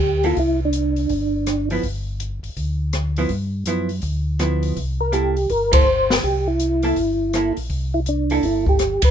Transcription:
Already playing: tonewheel organ D2 G4
0.23 hollow-body jazz guitar A#3 E4 A4, tonewheel organ F4, open hi-hat
0.37 tonewheel organ C2 E4, kick, open hi-hat
0.65 tonewheel organ D4
0.73 closed hi-hat
0.96 open hi-hat
1.09 tonewheel organ G1, kick, open hi-hat
1.47 cross-stick, closed hi-hat
1.70 hollow-body jazz guitar F3 B3 E4, open hi-hat
1.83 tonewheel organ G1, kick, open hi-hat
2.20 closed hi-hat
2.43 tonewheel organ G1, open hi-hat
2.57 tonewheel organ D2, kick, open hi-hat
2.93 cross-stick, closed hi-hat
3.16 hollow-body jazz guitar F3 B3 E4, open hi-hat
3.29 tonewheel organ G2, kick, open hi-hat
3.66 tonewheel organ F#2, hollow-body jazz guitar F3 B3 E4, closed hi-hat
3.89 open hi-hat
4.02 tonewheel organ D2, kick, open hi-hat
4.39 hollow-body jazz guitar F3 B3 E4, cross-stick, closed hi-hat
4.63 open hi-hat
4.77 tonewheel organ C2, kick, open hi-hat
5.01 tonewheel organ A#4
5.12 hollow-body jazz guitar A#3 E4 A4, tonewheel organ G4, closed hi-hat
5.37 open hi-hat
5.50 tonewheel organ G1 A#4, kick, open hi-hat
5.72 hollow-body jazz guitar A#3 E4 A4, tonewheel organ C5, kick, ride
6.10 tonewheel organ A#4, snare
6.23 tonewheel organ C2 G4, kick, open hi-hat
6.47 tonewheel organ E4
6.60 closed hi-hat
6.83 hollow-body jazz guitar A#3 E4 A4, open hi-hat
6.96 tonewheel organ G1, kick, open hi-hat
7.33 hollow-body jazz guitar A#3 E4 A4, cross-stick, closed hi-hat
7.57 tonewheel organ A#1, open hi-hat
7.70 tonewheel organ C2, kick, open hi-hat
7.94 tonewheel organ E4
8.06 tonewheel organ D4, closed hi-hat
8.30 hollow-body jazz guitar A#3 E4 A4, open hi-hat
8.43 tonewheel organ G1 E4, kick, open hi-hat
8.66 tonewheel organ G4, kick
8.79 cross-stick, closed hi-hat
9.02 tonewheel organ G1 B4, kick, ride

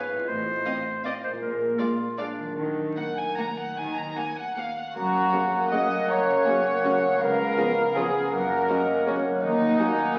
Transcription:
Already playing: harp G#2 B3 F4 B4, clarinet B4
0.10 harp A2
0.15 harp C4
0.19 harp F4
0.24 harp D#5
0.28 double bass section A1, cello section A2, clarinet C5
0.65 viola section C4, violin section D#5 F5
1.05 viola section C4, clarinet D5, violin section D#5 F5
1.24 harp A#2, clarinet C5
1.28 harp G#3
1.33 harp F4
1.37 harp D5
1.42 double bass section A#1, cello section A#2, clarinet A#4
1.79 viola section G#3, clarinet F4, violin section D5 F5
2.18 viola section G#3, clarinet D4, violin section D5 F5
2.39 harp D#3
2.43 harp F#3
2.48 harp F#4
2.52 harp A#4
2.56 double bass section D#2, cello section D#3, clarinet D4
2.97 viola section A#3, clarinet D#4, violin section F#5
3.17 violin section G#5
3.38 viola section A#3, violin section F#5 A#5
3.59 violin section F#5
3.77 double bass section D#2, cello section D#3, violin section G#5
3.96 violin section A#5
4.16 viola section A#3, violin section F#5 G#5
4.37 violin section F#5
4.57 viola section A#3, violin section F5 F#5
4.77 violin section F#5
4.95 double bass section F#1, harp F#2, cello section F#2, bassoon A#3, clarinet C#4, violin section F#4, trumpet section F#4, oboe F#5, flute A#5
5.14 harp F#3
5.33 viola section C#3 A#3, french horn section F#3 A#3, violin section C#4 F#4, harp F#4
5.52 harp A#4
5.72 viola section C#3 A#3, french horn section F#3 A#3, violin section C#4 F#4 D#5, harp F#4, trumpet section D#5, flute F#5
5.91 harp F#3
6.09 double bass section F#1, harp F#2, cello section F#2, trumpet section C#5, violin section C#5, flute A#5
6.27 harp C#3
6.45 viola section C#3 A#3, french horn section F#3 A#3, violin section C#4 F#4, harp F#4, flute G#5
6.65 harp A#4
6.84 viola section C#3 A#3, french horn section F#3 A#3, violin section C#4 F#4, harp F#4, flute F#5
7.03 harp F#3
7.20 double bass section C#2, cello section C#2, harp C#3, bassoon B3, clarinet C#4, violin section A#4, trumpet section A#4, flute F5, oboe F5
7.38 harp G#3
7.57 viola section C#3 B3, french horn section F3 B3, violin section C#4 F4, harp F4
7.77 harp B4
7.95 viola section C#3 B3, french horn section F3 B3, violin section C#4 F4 G#4, trumpet section G#4, harp G#4
8.14 harp F4
8.31 double bass section F#1, cello section F#2, harp F#2, bassoon A#3, violin section A#4, trumpet section A#4, flute F#5, oboe F#5
8.49 harp F#3
8.68 viola section C#3 A#3, french horn section F#3 C#4, harp C#4, violin section C#4 F#4, flute D#5
8.88 harp A#4
9.06 viola section C#3 A#3, french horn section F#3 C#4, violin section C#4 F#4, harp F#4, flute C#5
9.25 harp C#4
9.42 cello section D#2, double bass section D#2, harp D#3, bassoon A#3, clarinet D#4, violin section D#4, trumpet section D#4, flute D#5, oboe F#5
9.78 french horn section F#3 D#4, viola section F#3 A#3, violin section D#4 F#4, harp A#4, flute G#5
9.98 harp F#4

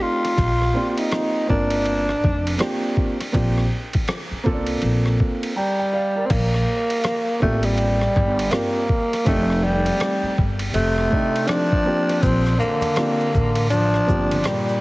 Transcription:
Already playing: grand piano A3 C4 D4 D#4 G4
0.02 tenor saxophone F4
0.25 cross-stick, ride
0.38 upright bass A#1, kick, ride
0.62 cross-stick
0.74 grand piano A#3 C4 F4 G4 D5
0.91 tenor saxophone F4
0.98 tenor saxophone D#4, ride
1.11 cross-stick, hi-hat pedal, ride
1.47 upright bass G1, grand piano A#3 C4 D4 F4 A#4, tenor saxophone D4, kick
1.70 ride
1.86 ride
2.09 cross-stick
2.24 upright bass F1, kick
2.47 ride
2.58 grand piano A#3 C4 D4 F4 G4, cross-stick, hi-hat pedal, ride
2.97 kick
3.21 cross-stick, ride
3.32 upright bass A#1, grand piano A#3 C4 D4 F4 G4, kick, ride
3.58 cross-stick
3.93 kick, ride
4.08 cross-stick, hi-hat pedal, ride
4.31 muted upright bass stroke
4.43 upright bass C2, grand piano A#3 C4 C#4 F4 A4, kick
4.51 grand piano D4
4.67 ride
4.82 upright bass A#1, ride
5.06 cross-stick
5.20 kick
5.43 ride
5.56 tenor saxophone G3, grand piano G5 A#5
5.79 grand piano G5
5.93 grand piano D5 F5
6.15 grand piano A#4 D5
6.26 tenor saxophone C4
6.30 upright bass A#1, tenor saxophone A#3, kick, crash, ride
6.54 cross-stick
6.90 ride
7.04 cross-stick, hi-hat pedal, ride
7.39 upright bass A1, tenor saxophone A3, grand piano A#3 C4 D4 F4 G4, kick
7.63 tenor saxophone G3, ride
7.78 ride
8.01 cross-stick
8.16 upright bass G1, kick
8.39 ride
8.50 grand piano A#3 C4 D4 F4 G4, tenor saxophone A#3, cross-stick, hi-hat pedal, ride
8.89 kick
9.13 cross-stick, ride
9.25 upright bass F1, grand piano A3 C4 D4 D#4 G4, tenor saxophone A3, kick, ride
9.50 cross-stick
9.64 tenor saxophone G3
9.86 ride
10.00 cross-stick, hi-hat pedal, ride
10.23 muted upright bass stroke
10.38 upright bass G1, kick
10.59 ride
10.73 upright bass F1, trombone C3, tenor saxophone A3, ride
10.98 cross-stick
11.10 grand piano A3 C4 D4 D#4 G4, kick
11.36 ride
11.47 trombone F3, tenor saxophone D4, cross-stick, hi-hat pedal, ride
11.72 kick
11.84 grand piano A#3 C4 D4 F4 G4
12.09 cross-stick, ride
12.21 upright bass A#1, trombone F3, tenor saxophone C4, kick, ride, maracas
12.46 cross-stick, maracas
12.58 trombone D3, tenor saxophone A#3, high conga, maracas
12.81 ride, high conga, maracas
12.95 grand piano A#3 C4 D4 F4 G4, cross-stick, hi-hat pedal, ride, maracas
13.20 maracas
13.35 upright bass A1, kick, low conga, maracas
13.55 ride, maracas
13.70 trombone F3, tenor saxophone D4, ride, high conga, maracas
13.94 cross-stick, maracas
14.07 upright bass G1, grand piano A#3 C4 D4 F4 G4, kick, maracas
14.31 ride, high conga, maracas
14.44 trombone A#2, tenor saxophone G3, cross-stick, hi-hat pedal, ride, maracas
14.69 maracas

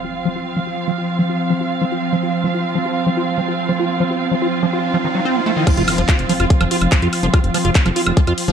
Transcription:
Already playing: ambient pad F3, string section C4 F4 F5, impact
0.04 acid bass F4
0.25 acid bass F3
0.36 acid bass F4
0.57 acid bass F3
0.67 acid bass F4
0.88 acid bass F3
0.98 acid bass F4
1.19 acid bass F3
1.29 acid bass F4
1.50 acid bass F3
1.61 acid bass F4
1.82 acid bass F3
1.92 acid bass F4
2.13 acid bass F3
2.23 acid bass F4
2.34 riser
2.44 acid bass F3
2.54 acid bass F4
2.75 acid bass F3
2.86 acid bass F4
3.06 acid bass F3
3.17 acid bass F4
3.38 acid bass F3
3.48 acid bass F4
3.69 acid bass F3
3.79 acid bass F4
4.00 acid bass F3
4.11 acid bass F4
4.32 acid bass F3
4.42 acid bass F4
4.63 acid bass F3
4.73 acid bass F4
4.94 acid bass F3
5.04 acid bass D#3
5.15 acid bass F#3
5.25 acid bass C4
5.36 acid bass A3
5.46 acid bass A3
5.57 acid bass D#3
5.67 acid bass F3, ambient pad F3, kick, closed hi-hat, crash, impact, high woodblock
5.77 analog synth bass F1, acid bass F4, closed hi-hat
5.88 open hi-hat, high woodblock
5.98 analog synth bass F1, acid bass F3, closed hi-hat
6.09 acid bass F4, kick, clap, closed hi-hat, high woodblock
6.19 analog synth bass F1, closed hi-hat
6.29 acid bass F3, open hi-hat
6.40 analog synth bass F1, acid bass F4, closed hi-hat, high woodblock
6.50 kick, closed hi-hat
6.61 analog synth bass F1, acid bass F3, closed hi-hat, high woodblock
6.71 acid bass F4, open hi-hat
6.81 analog synth bass F1, closed hi-hat, high woodblock
6.92 acid bass F3, kick, clap, closed hi-hat
7.02 analog synth bass F2, acid bass F4, closed hi-hat
7.13 open hi-hat, high woodblock
7.23 analog synth bass F1, acid bass F3, closed hi-hat
7.34 acid bass F4, kick, closed hi-hat, high woodblock
7.44 analog synth bass F1, closed hi-hat
7.54 acid bass F3, open hi-hat, high woodblock
7.65 analog synth bass F1, acid bass F4, closed hi-hat
7.75 kick, clap, closed hi-hat
7.86 analog synth bass F1, acid bass F3, closed hi-hat, high woodblock
7.96 acid bass F4, open hi-hat
8.06 analog synth bass F1, closed hi-hat, high woodblock
8.17 acid bass F3, kick, closed hi-hat
8.27 analog synth bass F2, acid bass F4, closed hi-hat, high woodblock
8.38 open hi-hat
8.48 analog synth bass D#1, acid bass F3, closed hi-hat

